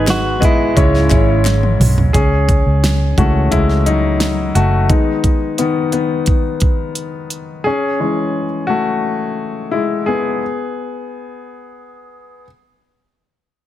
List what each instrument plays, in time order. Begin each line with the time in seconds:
Already playing: fingered electric bass G#1, grand piano G#2 D#3 G#3 B3 D#4 B4, french horn section D#3 D#4
0.07 clean electric guitar F#4, snare, clap, closed hi-hat
0.40 fingered electric bass B1, grand piano G#3 B3 G#4 D#5, kick, closed hi-hat
0.45 clean electric guitar E4
0.76 fingered electric bass C#2, grand piano G#2 G#3 C#4 E4 C#5, french horn section C#3 C#4, kick, closed hi-hat
0.95 snare
1.10 fingered electric bass G#1, grand piano G#3 C#4 E4 C#5, kick, clap, closed hi-hat
1.45 snare, clap, closed hi-hat
1.63 high tom
1.80 fingered electric bass B1, mid tom, open hi-hat
1.98 floor tom
2.13 fingered electric bass C#2, grand piano C#4 G#4, kick, closed hi-hat
2.49 kick, closed hi-hat
2.66 fingered electric bass C#2
2.84 snare, closed hi-hat
3.17 fingered electric bass C#2, grand piano E3 G#3 A3 C#4 F#4, kick, closed hi-hat
3.51 fingered electric bass C#2, grand piano G#3 E4, kick, closed hi-hat
3.69 snare
3.86 grand piano F#3 D#4, closed hi-hat
4.20 snare, closed hi-hat
4.55 fingered electric bass F#1, grand piano A3 F#4, closed hi-hat
4.89 grand piano D#3 G#3 B3 D#4, kick, closed hi-hat
5.24 kick, closed hi-hat
5.58 grand piano D#3 B3, closed hi-hat
5.92 grand piano D#3 B3, closed hi-hat
6.26 kick, closed hi-hat
6.60 kick, closed hi-hat
6.95 closed hi-hat
7.30 closed hi-hat
7.64 grand piano C#4 G#4
7.99 grand piano E3 G#3 C#4
8.67 grand piano A3 F#4
9.71 grand piano G#3 E4
10.06 grand piano B3 G#4